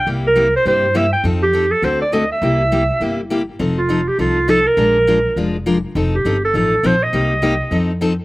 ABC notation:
X:1
M:4/4
L:1/8
Q:"Swing" 1/4=204
K:Fmix
V:1 name="Clarinet"
z B2 c c2 =e g | z G2 A c d e =e- | =e6 z2 | z F2 G F2 A B- |
B4- B z3 | z G2 A A2 c e- | e4- e z3 |]
V:2 name="Steel-string acoustic guitar"
[C,G,B,=EG] z [C,G,B,EG] z [C,G,B,EG] z [C,G,B,EG] z | [F,CEA] z [F,CEA] z [D,A,C^FA] z [D,A,CFA] z | [C,G,B,=EG] z [C,G,B,EG] z [C,G,B,EG] z [C,G,B,EG] z | [F,CEA] z [F,CEA] z [F,CEA] z [F,CEA] z |
[F,_A,DFB] z [F,A,DFB] z [F,A,DFB] z [F,A,DFB] z | [F,CEA] z [F,CEA] z [F,CEA] z [F,CEA] z | [C,G,B,EG] z [C,G,B,EG] z [F,CEA] z [F,CEA] z |]
V:3 name="Upright bass" clef=bass
C,,4 G,,4 | F,,4 D,,4 | C,,4 G,,,4 | F,,,4 C,,4 |
B,,,4 F,,,4 | F,,,2 G,,,2 A,,,2 B,,,2 | C,,4 F,,4 |]